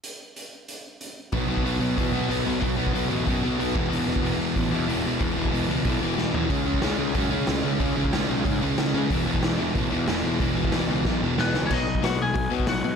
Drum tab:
CC |----------------|----------------|----------------|----------------|
HH |x---x---x---x---|o---o---o---o---|o---o---o---o---|o---o---o---o---|
SD |----------------|----------------|----------------|----------------|
FT |----------------|----------------|----------------|----------------|
BD |----------------|o--o----o-------|o--o----o-----o-|---o----o-------|

CC |----------------|----------------|----------------|----------------|
HH |o---o---o-------|o---o---o---o---|o---o---o---o---|o---o---o---o---|
SD |------------o---|----o-------o---|----o-------o---|----o-------o---|
FT |--------------o-|----------------|----------------|----------------|
BD |o--o----o-------|o--o----o-------|o--o----o-------|o--o----o-------|

CC |----------------|x---------------|
HH |o---o-----------|----o---o---o---|
SD |----o---o---o-o-|----o-------o---|
FT |----------------|----------------|
BD |o--o----o-------|o--o----o--o----|